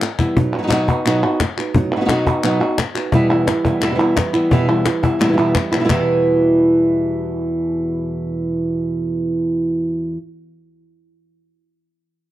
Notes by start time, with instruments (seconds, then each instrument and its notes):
0.01 muted nylon-string guitar stroke, clap
0.19 nylon-string guitar E3 G3 B3 E4, cajon bass, clap
0.36 nylon-string guitar B2 F#3 B3 D#4 F#4, muted nylon-string guitar stroke, cajon bass
0.54 nylon-string guitar B3 D#4 F#4
0.59 nylon-string guitar F#3 F#4
0.63 nylon-string guitar F#3 B3 D#4 F#4
0.67 nylon-string guitar F#3 B3 D#4 F#4, muted nylon-string guitar stroke, cajon slap, clap
0.72 nylon-string guitar B2 F#3 B3 D#4 F#4
0.88 nylon-string guitar B3 D#4 F#4, cajon bass, clap
1.05 nylon-string guitar B2 F#3 B3 D#4 F#4, clap
1.22 nylon-string guitar B3 D#4 F#4, clap
1.40 muted nylon-string guitar stroke, cajon bass, cajon slap, clap
1.57 nylon-string guitar B3 D#4 F#4, cajon slap, clap
1.74 nylon-string guitar B2 F#3 B3 D#4 F#4, muted nylon-string guitar stroke, cajon bass
1.92 nylon-string guitar B3 D#4 F#4, cajon slap
1.96 nylon-string guitar F#3 D#4 F#4
2.01 nylon-string guitar F#3 B3 D#4 F#4
2.05 nylon-string guitar F#3 B3 D#4 F#4, muted nylon-string guitar stroke, cajon slap
2.10 nylon-string guitar B2 F#3 B3 D#4 F#4, clap
2.26 nylon-string guitar B3 D#4 F#4, cajon bass
2.43 nylon-string guitar B2 F#3 B3 D#4 F#4, clap
2.60 nylon-string guitar B3 D#4 F#4
2.78 muted nylon-string guitar stroke, cajon slap, clap
2.95 nylon-string guitar B3 D#4 F#4, clap
3.12 nylon-string guitar E2 B2 E3 G3 B3 E4, cajon bass
3.30 nylon-string guitar E3 G3 B3 E4
3.47 nylon-string guitar E3 G3 B3 E4, muted nylon-string guitar stroke, cajon slap, clap
3.65 nylon-string guitar E3 G3 B3 E4, cajon bass
3.81 nylon-string guitar E2 B2 E3 G3 B3 E4, muted nylon-string guitar stroke, cajon slap, clap
3.90 nylon-string guitar B2 E3 G3 B3 E4
3.95 nylon-string guitar B2 E3 G3 B3 E4
4.00 nylon-string guitar E2 B2 E3 G3 B3 E4
4.16 nylon-string guitar E3 G3 B3 E4, muted nylon-string guitar stroke, cajon bass, cajon slap, clap
4.34 nylon-string guitar E3 G3 B3 E4, clap
4.51 nylon-string guitar E2 B2 E3 G3 B3 E4, cajon bass
4.68 nylon-string guitar E3 G3 B3 E4
4.86 nylon-string guitar E3 G3 B3 E4, muted nylon-string guitar stroke, cajon slap, clap
5.03 nylon-string guitar E3 G3 B3 E4, cajon bass
5.19 nylon-string guitar E2 B2 G3, muted nylon-string guitar stroke, cajon slap, clap
5.24 nylon-string guitar B2 E3 G3 B3 E4
5.28 nylon-string guitar B2 E3 G3 B3 E4
5.33 nylon-string guitar B2 E3 G3 B3 E4
5.37 nylon-string guitar E2 B2 E3 G3 B3 E4, clap
5.54 nylon-string guitar E3 G3 B3 E4, muted nylon-string guitar stroke, cajon bass, cajon slap, clap
5.72 nylon-string guitar B2 E3 G3 B3 E4, cajon slap, clap
5.76 nylon-string guitar E3 G3 B3 E4
5.80 nylon-string guitar B2 E3 G3 B3 E4
5.85 nylon-string guitar B2 E3 G3 B3 E4
5.89 nylon-string guitar E2 B2 E3 G3 B3 E4, cajon bass, clap